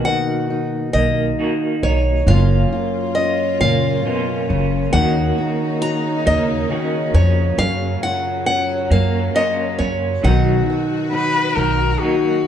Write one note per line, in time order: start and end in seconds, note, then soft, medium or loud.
0.00 0.94 B2 medium
0.00 0.92 D#3 medium
0.00 2.28 D#3 medium
0.00 0.94 A#3 medium
0.00 2.28 A#3 medium
0.00 0.49 D#4 medium
0.00 1.40 F#4 medium
0.05 2.30 F#4 medium
0.05 0.93 F#5 medium
0.50 2.23 D#4 medium
0.93 1.31 B1 medium
0.93 2.22 D#3 medium
0.93 1.38 A#3 medium
0.93 1.86 D#5 medium
1.39 3.60 A#3 medium
1.39 1.82 D#4 soft
1.39 2.27 F#4 soft
1.83 2.20 B1 medium
1.83 2.37 D#4 medium
1.83 2.29 C#5 medium
2.27 2.64 F#1 medium
2.27 4.88 F#2 medium
2.27 10.20 C#3 medium
2.27 4.93 F#3 medium
2.27 5.79 A#3 medium
2.27 12.47 C#4 medium
2.27 3.17 C#4 medium
2.27 4.05 F4 medium
2.27 4.91 F4 medium
2.27 2.71 F4 medium
2.27 3.14 F5 medium
2.73 4.89 F4 medium
3.15 4.97 C#4 medium
3.15 3.60 D#5 medium
3.60 3.97 F#1 medium
3.60 4.04 A#2 medium
3.60 4.05 A#3 medium
3.60 4.92 F5 medium
4.05 4.49 B2 medium
4.05 4.93 A#3 medium
4.05 4.49 C#4 medium
4.05 4.94 F4 medium
4.49 4.86 F#1 medium
4.49 4.94 C#3 medium
4.49 6.71 C#4 medium
4.93 5.30 D#2 loud
4.93 6.69 D#3 medium
4.93 6.26 A#3 medium
4.93 7.56 D#4 medium
4.93 6.72 F#4 medium
4.93 5.81 F#5 medium
5.38 5.82 F#4 medium
5.82 8.04 F#4 medium
5.82 6.27 A#5 medium
6.26 6.63 D#2 medium
6.26 6.70 C#3 medium
6.26 6.70 A#3 medium
6.26 7.14 D#5 medium
6.70 7.14 D#3 medium
6.70 8.18 A#3 medium
6.70 7.14 C#4 soft
6.70 8.18 F#4 medium
7.14 7.51 F2 medium
7.14 7.59 F3 medium
7.14 7.68 C#4 medium
7.14 7.56 C#5 medium
7.58 7.95 F#2 loud
7.58 10.19 F#2 medium
7.58 10.22 F#3 medium
7.58 8.03 F5 medium
8.03 10.19 F4 medium
8.03 8.44 F#5 medium
8.46 10.19 C#4 medium
8.46 8.91 F#5 medium
8.90 9.27 F#2 medium
8.90 10.25 F#3 medium
8.90 9.34 A#3 medium
8.90 9.37 F5 medium
9.35 10.32 A#3 medium
9.35 9.78 C#4 medium
9.35 10.33 F4 medium
9.35 9.78 D#5 medium
9.79 10.16 F#2 medium
9.79 10.23 C#4 medium
9.79 10.25 C#5 medium
10.23 10.60 B1 loud
10.23 11.57 B2 medium
10.23 12.47 D#3 medium
10.23 11.55 D#3 medium
10.23 11.56 F#3 medium
10.23 12.01 D#4 medium
10.23 11.11 D#4 medium
10.23 12.47 F#4 medium
10.23 11.98 F#5 medium
10.27 10.68 F#4 medium
10.70 12.47 F#4 medium
11.12 12.47 D#4 medium
11.12 11.57 B4 loud
11.55 11.94 B1 medium
11.55 12.47 D#3 medium
11.55 12.00 F#3 medium
11.55 12.01 A#4 medium
12.00 12.47 F#3 medium
12.00 12.46 A#3 medium
12.00 12.47 D#4 medium
12.00 12.47 F#4 medium